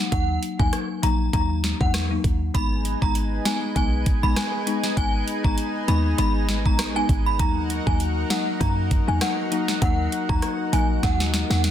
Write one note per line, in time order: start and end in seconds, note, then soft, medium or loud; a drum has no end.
0.00 0.10 A#3 medium
0.00 0.10 D#4 medium
0.12 0.38 D#2 loud
0.12 0.30 F#3 medium
0.12 0.30 A#3 medium
0.12 0.30 D#4 loud
0.12 0.39 F#5 loud
0.12 kick loud
0.12 closed hi-hat medium
0.43 closed hi-hat medium
0.59 0.71 D#2 medium
0.59 1.00 F#3 medium
0.59 1.00 A#3 medium
0.59 1.00 D#4 medium
0.59 0.71 G#5 medium
0.59 kick loud
0.73 cross-stick medium
0.73 closed hi-hat medium
1.03 1.29 A#1 medium
1.03 1.31 F#3 medium
1.03 1.31 A#3 medium
1.03 1.31 D#4 medium
1.03 1.18 A#5 medium
1.03 closed hi-hat medium
1.33 1.74 D#2 loud
1.33 1.77 F#3 loud
1.33 1.77 A#3 medium
1.33 1.77 D#4 loud
1.33 1.48 A#5 medium
1.33 kick medium
1.33 closed hi-hat medium
1.64 snare medium
1.64 closed hi-hat medium
1.80 2.18 E2 loud
1.80 1.95 F#3 medium
1.80 1.95 A#3 medium
1.80 1.95 D#4 medium
1.80 1.93 F#5 medium
1.80 kick medium
1.94 cross-stick loud
1.94 snare loud
1.94 closed hi-hat medium
2.11 2.25 F#3 medium
2.11 2.25 A#3 medium
2.11 2.25 D#4 medium
2.24 2.50 D#2 medium
2.24 kick loud
2.24 closed hi-hat medium
2.54 2.95 G#1 loud
2.54 2.72 G#3 medium
2.54 2.72 B3 medium
2.54 2.72 D#4 loud
2.54 7.36 D#4 medium
2.54 7.36 G#4 medium
2.54 7.36 B4 medium
2.54 7.36 G#5 medium
2.54 2.81 B5 loud
2.54 kick loud
2.54 closed hi-hat medium
2.85 closed hi-hat medium
3.01 3.40 G#1 medium
3.01 3.42 G#3 medium
3.01 3.42 B3 medium
3.01 3.42 D#4 medium
3.01 3.14 A#5 medium
3.01 kick medium
3.15 closed hi-hat medium
3.45 3.74 G#3 medium
3.45 3.74 B3 medium
3.45 3.74 D#4 medium
3.45 3.60 G#5 medium
3.45 snare loud
3.45 closed hi-hat medium
3.75 4.17 B1 loud
3.75 4.19 G#3 loud
3.75 4.19 B3 medium
3.75 4.19 D#4 loud
3.75 3.91 G#5 medium
3.75 kick medium
3.75 closed hi-hat medium
4.06 kick loud
4.06 closed hi-hat medium
4.23 4.35 A#1 loud
4.23 4.63 G#3 medium
4.23 4.64 B3 medium
4.23 4.64 D#4 medium
4.23 4.35 B5 medium
4.36 4.81 G#5 medium
4.36 cross-stick loud
4.36 snare loud
4.36 closed hi-hat medium
4.66 4.95 G#3 medium
4.66 4.95 B3 medium
4.66 4.95 D#4 medium
4.66 closed hi-hat medium
4.84 snare medium
4.97 5.23 G#1 loud
4.97 5.15 G#3 loud
4.97 5.15 B3 medium
4.97 5.15 D#4 loud
4.97 5.24 G#5 loud
4.97 kick loud
4.97 closed hi-hat medium
5.28 closed hi-hat medium
5.44 5.56 G#1 medium
5.44 5.85 G#3 medium
5.44 5.85 B3 medium
5.44 5.85 D#4 medium
5.44 5.56 A#5 medium
5.44 kick loud
5.58 closed hi-hat medium
5.88 6.14 D#2 loud
5.88 6.16 G#3 medium
5.88 6.16 B3 medium
5.88 6.16 D#4 medium
5.88 6.03 B5 medium
5.88 closed hi-hat medium
6.18 6.67 G#1 loud
6.18 6.61 G#3 loud
6.18 6.62 B3 medium
6.18 6.62 D#4 loud
6.18 6.33 B5 medium
6.18 closed hi-hat medium
6.49 snare medium
6.49 closed hi-hat medium
6.65 7.03 A#1 medium
6.65 6.80 G#3 medium
6.65 6.80 B3 medium
6.65 6.80 D#4 medium
6.65 6.77 A#5 medium
6.65 kick medium
6.79 cross-stick loud
6.79 snare loud
6.79 closed hi-hat medium
6.96 7.10 G#3 medium
6.96 7.10 B3 medium
6.96 7.10 D#4 medium
6.96 7.08 G#5 medium
7.09 7.41 G#1 loud
7.09 kick loud
7.09 closed hi-hat medium
7.26 7.38 B5 medium
7.39 7.80 D#2 loud
7.39 7.57 F#3 medium
7.39 7.57 A#3 medium
7.39 11.71 D#4 medium
7.39 7.57 D#4 loud
7.39 11.71 F#4 medium
7.39 11.71 A#4 medium
7.39 11.71 F#5 medium
7.39 7.66 A#5 loud
7.39 kick loud
7.39 closed hi-hat medium
7.70 closed hi-hat medium
7.86 8.25 D#2 medium
7.86 8.27 F#3 medium
7.86 8.27 A#3 medium
7.86 8.27 D#4 medium
7.86 7.99 G#5 medium
7.86 kick medium
8.00 closed hi-hat medium
8.30 8.58 F#3 medium
8.30 8.58 A#3 medium
8.30 8.59 D#4 medium
8.30 8.45 F#5 medium
8.30 snare loud
8.30 closed hi-hat medium
8.60 9.02 F#2 loud
8.60 9.04 F#3 loud
8.60 9.04 A#3 medium
8.60 9.04 D#4 loud
8.60 8.76 A#5 medium
8.60 kick loud
8.60 closed hi-hat medium
8.91 kick loud
8.91 closed hi-hat medium
9.08 9.19 E2 medium
9.08 9.48 F#3 medium
9.08 9.48 A#3 medium
9.08 9.49 D#4 medium
9.08 9.20 G#5 medium
9.21 9.66 F#5 loud
9.21 cross-stick loud
9.21 snare loud
9.21 closed hi-hat medium
9.51 9.80 F#3 medium
9.51 9.80 A#3 medium
9.51 9.80 D#4 medium
9.51 closed hi-hat medium
9.68 snare medium
9.82 10.08 D#2 loud
9.82 9.99 F#3 medium
9.82 9.99 A#3 medium
9.82 10.00 D#4 loud
9.82 10.09 F#5 loud
9.82 kick loud
9.82 closed hi-hat medium
10.12 closed hi-hat medium
10.29 10.41 D#2 medium
10.29 10.70 F#3 medium
10.29 10.70 A#3 medium
10.29 10.70 D#4 medium
10.29 10.41 A#5 medium
10.29 kick loud
10.42 cross-stick medium
10.42 closed hi-hat medium
10.73 10.99 A#1 medium
10.73 11.01 F#3 medium
10.73 11.01 A#3 medium
10.73 11.01 D#4 medium
10.73 10.88 G#5 medium
10.73 closed hi-hat medium
11.03 11.44 D#2 loud
11.03 11.46 F#3 loud
11.03 11.46 A#3 medium
11.03 11.47 D#4 loud
11.03 11.18 F#5 medium
11.03 kick medium
11.03 snare medium
11.03 closed hi-hat medium
11.20 snare medium
11.34 snare medium
11.34 closed hi-hat medium
11.50 11.71 E2 loud
11.50 11.64 F#3 medium
11.50 11.65 A#3 medium
11.50 11.65 D#4 medium
11.50 11.62 F#5 medium
11.50 snare medium
11.64 snare loud
11.64 closed hi-hat medium